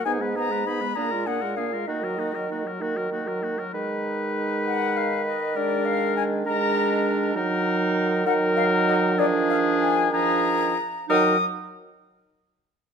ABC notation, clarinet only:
X:1
M:6/8
L:1/16
Q:3/8=65
K:Ebm
V:1 name="Clarinet"
E C E C E C =D F D F D F | E G E G E G E G E G E G | E12 | =D6 D6 |
E6 E6 | =D6 D4 z2 | E2 z8 z2 |]